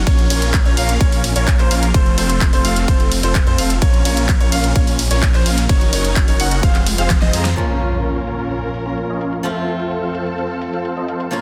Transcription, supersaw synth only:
0.07 A#3 C#4 F4 A#4 C#5
0.30 A#3 C#4 F4 A#4 C#5
0.66 A#3 C#4 F4 A#4 C#5
0.77 A#3 C#4 F4 A#4 F5
1.01 A#3 C#4 F4 A#4 C#5
1.36 A#3 C#4 F4 A#4 C#5
1.59 A#3 C#4 F4 A#4 C5
1.71 A#3 C#4 F4 A#4 F5
1.94 A3 C4 F4 A4 C5
2.18 A3 C4 F4 A4 C5
2.53 A3 C4 F4 A4 C5
2.65 A3 C4 F4 A4 F5
2.88 A3 C4 F4 A4 C5
3.23 A3 C4 F4 A4 C5
3.47 A3 C4 F4 A4 C5
3.58 A3 C4 F4 A4 F5
3.82 A#3 C#4 F4 A#4 C#5
4.05 A#3 C#4 F4 A#4 C#5
4.40 A#3 C#4 F4 A#4 C#5
4.52 A#3 C#4 F4 A#4 F5
4.76 A#3 C#4 F4 A#4 C#5
5.11 A#3 C#4 F4 A#4 C#5
5.34 A#3 C#4 F4 A#4 C5
5.46 A#3 C#4 F4 A#4 F5
5.69 C#4 D#4 F#4 A#4 C#5
5.93 C#4 D#4 F#4 A#4 C#5
6.28 C#4 D#4 F#4 A#4 C#5
6.40 C#4 D#4 F#4 A#4 F#5
6.63 C4 F4 G#4 C5 F5
6.98 C4 F4 G#4 C5 F5
7.22 C4 F4 G#4 C5 D#5
7.33 C4 F4 G#4 C5 A#5
7.57 C#4 F4 A#4 C#5 F5
7.80 C#4 F4 A#4 C#5 F5
8.15 C#4 F4 A#4 C#5 F5
8.27 C#4 F4 A#4 C#5 F5
8.51 C#4 F4 A#4 C#5 F5
8.86 C#4 F4 A#4 C#5 F5
9.09 C#4 F4 A#4 C#5 D#5
9.21 C#4 F4 A#4 C#5 F5
9.44 C4 F4 A4 C5 F5
9.68 C4 F4 A4 C5 F5
10.03 C4 F4 A4 C5 F5
10.15 C4 F4 A4 C5 F5
10.38 C4 F4 A4 C5 F5
10.73 C4 F4 A4 C5 F5
10.97 C4 F4 A4 C5 D#5
11.08 C4 F4 A4 C5 F5
11.32 C#4 F4 A#4 C#5 F5

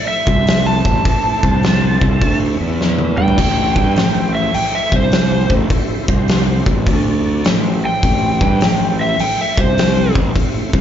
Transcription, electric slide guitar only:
0.08 E5
0.66 A5
3.18 G5
4.35 E5
4.54 G5
4.75 E5
4.96 C5
7.85 G5
9.01 E5
9.20 G5
9.41 E5
9.60 C5

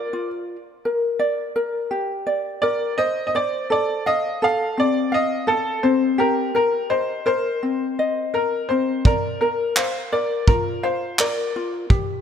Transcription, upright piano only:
Already playing: D5
2.62 D5
2.98 D#5
3.27 D#5
3.36 D5
3.72 D5
4.07 D#5
4.44 F5
4.80 D5
5.14 D#5
5.48 A4
5.83 C5
6.20 A#4
6.56 A#4
6.90 C5
7.26 C5
8.34 A#4
8.69 C5
9.07 A#4
9.41 A#4
9.77 C5
10.13 D5
10.47 A#4
10.84 C5
11.20 D5

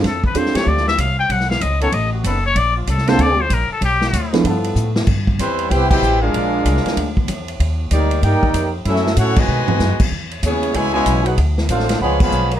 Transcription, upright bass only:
0.03 F2
0.35 E2
0.55 muted upright bass stroke
0.66 D2
0.98 C2
1.29 B1
1.61 C#2
1.92 A1
2.24 F#1
2.55 A#1
2.87 C2
3.18 D2
3.50 A#1
3.70 muted upright bass stroke
3.81 B1
4.13 D2
4.44 G2
4.76 A2
5.07 G2
5.39 E2
5.70 C2
6.02 A1
6.34 A#1
6.65 C2
6.85 muted upright bass stroke
6.96 D2
7.28 E2
7.60 D#2
7.91 D2
8.23 G2
8.33 D#2
8.43 D2
8.54 F2
8.85 F#2
9.17 A2
9.48 B2
9.68 muted upright bass stroke
9.80 F#2
9.99 muted upright bass stroke
10.11 E2
10.43 D#2
10.74 C#2
11.06 B1
11.38 D2
11.69 A1
12.00 C#2
12.32 B1

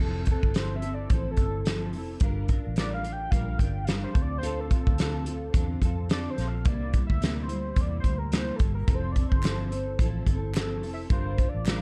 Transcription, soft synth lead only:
0.31 A4
0.58 C5
0.76 E5
0.94 D5
1.12 C5
1.31 A4
2.78 D5
2.94 F5
3.12 G5
3.31 F5
3.59 G5
3.85 F5
4.04 C5
4.22 D5
4.38 C5
4.60 A4
4.80 A4
6.12 D5
6.30 C5
6.47 F5
6.67 D5
7.07 E5
7.42 C5
7.80 D5
8.00 C5
8.18 A#4
8.36 C5
8.56 A4
8.75 A#4
8.94 C5
9.12 D5
9.29 C5
10.59 A4
10.94 E5
11.12 C5
11.49 D5

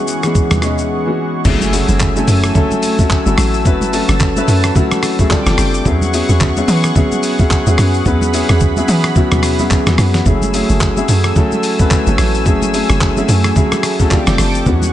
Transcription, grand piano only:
Already playing: E3 G#3 B3 C#4 E4 F#4 G#4
0.23 E3 G#3 B3 C#4 G#4
0.62 E3 G#3 B3 C#4 D#4
1.06 E3 G#3 B3 C#4 F#4
1.45 F#3 A3 C#4 E4 G#4
1.73 F#3 A3 C#4 E4 G#4
2.16 F#3 A3 C#4 E4 A4
2.55 F#3 A3 C#4 E4 A4
2.99 F#3 A3 C#4 E4 F#4
3.26 F#3 A3 C#4 E4 A4
3.65 F#3 A3 C#4 E4 B4
3.93 F#3 A3 C#4 E4 A4
4.36 F#3 A3 C#4 E4 B4
4.75 F#3 A3 C#4 E4 F#4
5.19 F#3 A3 C#4 E4 G#4
5.30 G3 C4 D4 F4 A4 A5
5.46 G3 C4 D4 F4 A4
5.86 F#3 B3 C#4 E4 G#4
6.13 F#3 B3 C#4 E4 G#4
6.57 F#3 B3 C#4 E4 G#4
6.96 F#3 B3 C#4 E4 G#4
7.39 F#3 B3 C#4 E4 G#4
7.66 F#3 B3 C#4 E4 G#4
8.06 F#3 B3 C#4 E4 B4
8.33 F#3 B3 C#4 E4 G#4
8.77 F#3 B3 C#4 E4 G#4
9.16 F#3 B3 C#4 E4 F#4
9.59 F#3 B3 C#4 E4 G#4
9.87 F#3 B3 C#4 E4 F#4
10.26 F#3 A3 C#4 E4 G#4
10.53 F#3 A3 C#4 E4 G#4
10.97 F#3 A3 C#4 E4 G#4
11.36 F#3 A3 C#4 E4 A4
11.79 F#3 A3 C#4 E4 B4
12.07 F#3 A3 C#4 E4 A4
12.46 F#3 A3 C#4 E4 G#4
12.74 F#3 A3 C#4 E4 G#4
13.17 F#3 A3 C#4 E4 G#4
13.56 F#3 A3 C#4 E4 G#4
13.99 F#3 A3 C#4 E4 A4
14.11 F3 A3 C4 D4 G4 F5
14.27 F3 A3 C4 D4 G4
14.39 A5
14.66 E3 G#3 B3 C#4 F#4

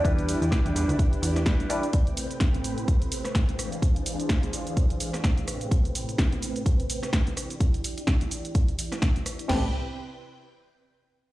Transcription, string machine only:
Already playing: E4 D5 G5
1.94 A2 C4 B4
3.58 E3 D4 G#4 C5 F5
5.48 A2 C4 B4 G5
7.37 E4 D5
9.49 C4 B4 G5

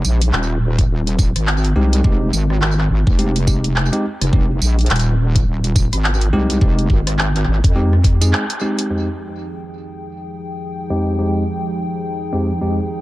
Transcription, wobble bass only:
0.04 A#1
0.33 D#1
0.90 D#1
1.36 G#1
1.76 C2
2.04 F1
2.33 G#1
2.90 G#1
3.07 F1
4.21 F1
4.33 F1
4.61 A#1
4.90 D#1
5.47 D#1
5.93 G#1
6.33 C2
6.61 F1
6.90 G#1
7.47 G#1
7.64 F2

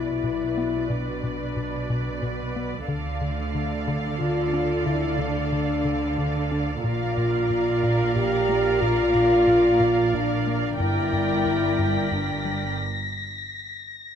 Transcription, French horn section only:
Already playing: E4
0.91 D4
2.22 B3
3.21 A3
4.19 F4
4.85 E4
5.19 D4
6.84 F4
8.15 G4
8.81 F4
10.14 D4
10.79 E4
12.13 D4

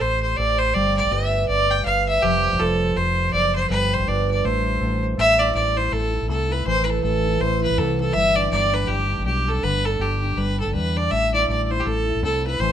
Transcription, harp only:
Already playing: A3 G4 A4 C5
0.38 G4 A4 C5
0.75 G3
1.11 G4 B4 D5
1.84 G4 B4 D5
2.23 F3
2.59 F4 A4 C5
3.33 F4 A4 C5
3.70 G3
4.06 D4 G4 B4
4.44 A3
4.80 G4 A4 C5
5.17 A3
5.40 E4
5.54 A3
5.77 E4
5.92 A3
6.14 E4
6.29 A3
6.51 E4
6.66 E3
6.88 E4
7.03 A3
7.26 E4
7.40 A3
7.64 E4
7.78 A3
8.00 E4
8.15 G3
8.37 D4
8.52 G3
8.73 D4
8.89 G3
9.12 D4
9.27 G3
9.49 D4
9.63 D3
9.86 D4
10.01 G3
10.23 D4
10.37 G3
10.60 D4
10.74 G3
10.96 D4
11.11 A3
11.33 E4
11.49 A3
11.72 E4
11.86 A3
12.09 E4
12.23 A3
12.46 E4
12.61 E3

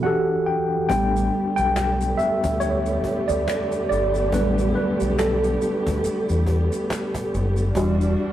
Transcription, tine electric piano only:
0.02 E3 D4 F#4 G4 F#5
0.06 A4
0.46 G5
0.89 G3 B3 D4 G5
1.56 G5
2.17 E5
2.60 C#5
3.28 D5
3.89 D5
4.33 G3 B3 D4 B4
4.75 B4
5.18 A4
7.76 G3 D4 F#4

